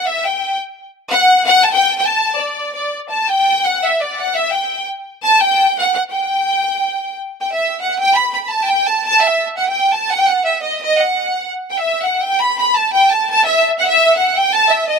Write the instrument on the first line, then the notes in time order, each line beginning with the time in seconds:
violin section
0.07 E5
0.25 G5
1.11 F#5
1.45 F#5
1.64 A5
1.72 G5
1.98 G5
2.06 A5
2.36 D5
2.74 D5
3.10 A5
3.29 G5
3.64 F#5
3.84 E5
4.01 D5
4.19 F#5
4.35 E5
4.51 G5
5.23 A5
5.41 G5
5.79 F#5
5.95 F#5
6.11 G5
7.41 G5
7.52 E5
7.81 F#5
8.00 G5
8.15 B5
8.34 B5
8.44 B5
8.49 A5
8.67 G5
8.86 A5
9.06 A5
9.22 E5
9.58 F#5
9.69 G5
9.93 A5
10.11 F#5
10.19 G5
10.28 F#5
10.45 E5
10.63 D#5
10.82 D#5
10.98 F#5
11.70 G5
11.78 E5
12.04 F#5
12.23 G5
12.41 B5
12.59 B5
12.75 A5
12.93 G5
13.11 A5
13.30 A5
13.45 E5
13.80 F#5
13.89 E5
14.17 F#5
14.36 G5
14.53 A5
14.69 E5
14.88 D#5